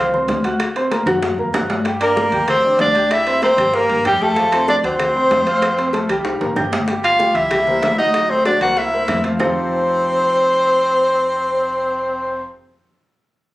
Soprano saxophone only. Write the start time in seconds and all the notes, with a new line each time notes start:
Already playing: C5
2.02 A#4
2.49 C5
2.81 D5
3.12 E5
3.43 C5
3.75 A#4
4.06 G4
4.22 A4
4.70 D5
4.86 C5
7.04 F5
7.35 E5
7.99 D#5
8.30 C5
8.46 D5
8.62 F#5
8.78 E5
9.41 C5